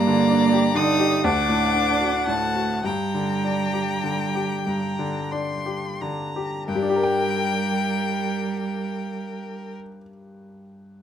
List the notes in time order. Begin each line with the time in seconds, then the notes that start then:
Already playing: G2 A#3 D5 A#5
0.07 D3
0.30 D4
0.53 G4
0.75 D3 D#4 D#6
0.99 G4
1.23 D2 D4 F#5 D6
1.49 A2
1.74 D4
2.01 F#4
2.27 A2 A3 A5
2.55 F#4
2.84 G2 G3 G5 A#5
3.14 D3
3.44 D4
3.74 G4
4.04 D3
4.35 G4
4.67 G2 A#5
4.99 D3
5.32 D4 C6
5.66 G4
6.01 D3 A#5
6.36 G4
6.68 G2 G3 A#4 G5
6.75 G3
6.82 D4
6.89 G4
6.96 A#4
7.03 G5